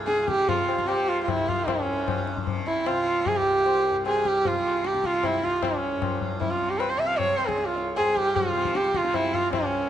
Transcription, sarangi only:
0.07 G#4
0.22 G#4
0.27 G4
0.48 F4
0.87 G4
1.08 F4
1.23 F4
1.29 E4
1.48 F4
1.69 C#4
2.67 E4
2.87 F4
3.27 G#4
3.37 G4
4.07 G#4
4.27 G4
4.47 F4
4.86 G4
5.06 F4
5.25 E4
5.44 F4
5.64 C#4
6.40 E4
6.50 F4
6.70 G4
6.78 B4
6.90 C5
6.99 E5
7.08 F5
7.18 C#5
7.37 C5
7.46 G#4
7.67 F4
7.97 G#4
8.16 G4
8.35 F4
8.76 G4
8.96 F4
9.15 E4
9.34 F4
9.53 C#4

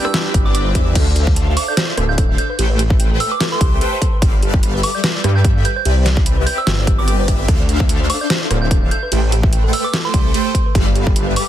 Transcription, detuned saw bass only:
0.34 G1
0.75 E2
0.96 D2
1.98 D1
2.59 A1
3.61 C2
4.22 G1
5.24 G2
5.85 C2
6.67 G1
7.48 D2
8.51 D1
9.12 A1
10.14 C2
10.75 G1

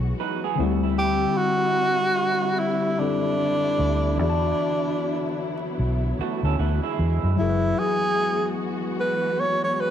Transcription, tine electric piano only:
Already playing: F#3 E4 G#4 C#5
0.55 D3 C4
0.60 G3 E4
2.98 D3 C4 E4 A4
4.17 E3 D4
4.21 F#4 G#4
4.30 A5
7.36 F#3 E4
7.41 G#4 A#4
7.49 B4

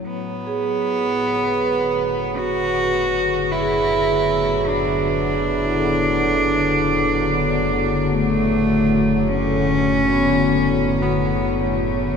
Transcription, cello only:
0.07 B3
2.38 F#4
3.52 E4
4.69 D4
8.13 A3
9.28 C#4
11.02 B3
11.60 A3

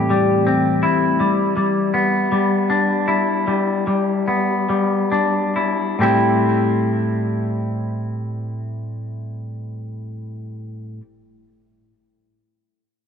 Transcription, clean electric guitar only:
Already playing: A2 E4 G4
0.10 G3
0.47 C4
0.83 E4
1.20 G3
1.57 G3
1.94 B3
2.32 G3
2.70 D4
3.08 E4
3.47 G3
3.87 G3
4.28 B3
4.69 G3
5.12 D4
5.56 E4
5.99 A2 G3 C4 G4
6.03 E4

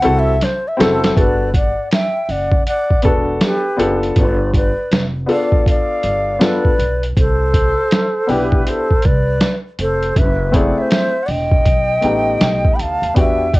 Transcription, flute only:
0.78 C5
1.15 D5
1.53 F#5
1.91 G5
2.24 G5
2.29 F#5
2.66 F#5
3.05 D5
3.43 B4
4.16 D5
4.55 D5
5.30 F5
5.66 F5
6.42 D5
7.17 C5
8.30 B4
8.68 C5
9.05 D5
9.80 C5
10.17 E5
10.54 F#5
10.78 E5
11.23 F#5
11.29 G5
12.73 B5
12.80 A5
13.17 G5
13.54 F#5

